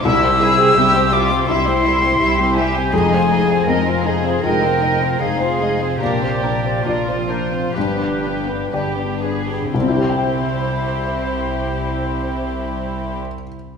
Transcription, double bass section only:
X:1
M:4/4
L:1/8
Q:1/4=73
K:Fdor
V:1 name="Double bass section" clef=bass
C,,2 C,,2 C,,2 C,,2 | F,,,2 F,,,2 F,,,2 F,,,2 | B,,,2 B,,,2 G,,,2 G,,,2 | C,,8 |]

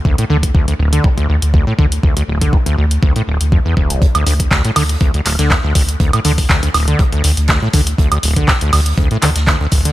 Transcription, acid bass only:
X:1
M:4/4
L:1/16
Q:"Swing 16ths" 1/4=121
K:Dm
V:1 name="Acid bass" clef=bass
D,, A,, D, z D,, D,, D,,, D, F,, D,, D,, z D,, A,, D, z | D,, D,, D,,, D, F,, D,, D,, z D,, A,, D,,, z F,, E,, D,, C,, | F,, D,, D,, z D,, A,, D, z D,, D,, D,,, D, F,, D,, D,, z | D,, A,, D, z D,, D,, D,,, D, F,, D,, D,, z D,, A,, D, z |
D,, D,, D,,, D, F,, D,, D,, z D,, A,, D, z D,, D,, D,,, D, |]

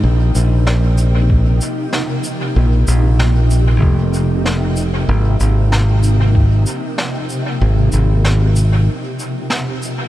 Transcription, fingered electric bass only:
X:1
M:4/4
L:1/8
Q:"Swing 16ths" 1/4=95
K:Ab
V:1 name="Fingered electric bass" clef=bass
B,,, B,,,4 z3 | B,,, B,,,3 F,,,4 | A,,, A,,,4 z3 | A,,, A,,,3 z4 |]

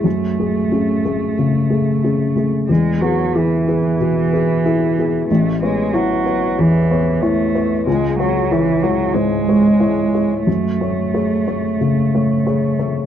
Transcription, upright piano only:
X:1
M:4/4
L:1/8
Q:1/4=92
K:F#dor
V:1 name="Upright piano"
F,, [A,G] [CG] [A,G] C, [A,G] [CG] [A,G] | E,, [B,G] [EG] [B,G] B,, [B,G] [EG] [B,G] | A,,, [B,c] [Ec] [B,c] E,, [B,c] [Ec] [B,c] | C,, [G,c] [Ec] [G,c] G,, [G,c] [Ec] [G,c] |
F,, [A,c] [Gc] [A,c] C, [A,c] [Gc] [A,c] |]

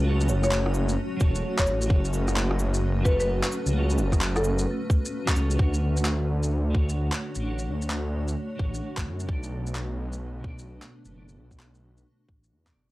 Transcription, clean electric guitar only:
X:1
M:4/4
L:1/16
Q:"Swing 16ths" 1/4=130
K:Dlyd
V:1 name="Clean electric guitar"
[F,FAc]8- [F,FAc]2 [F,FAc]6 | [F,FAc]8- [F,FAc]2 [F,FAc]6 | [F,FAc]8- [F,FAc]2 z3 [F,FAc]3 | [D,DFc]8- [D,DFc]2 [D,DFc]6 |
[D,DFc]8- [D,DFc]2 [D,DFc]6 | [B,,B,Ad]8- [B,,B,Ad]2 [B,,B,Ad]6 | [B,,B,Ad]8- [B,,B,Ad]2 z3 [B,,B,Ad]3 |]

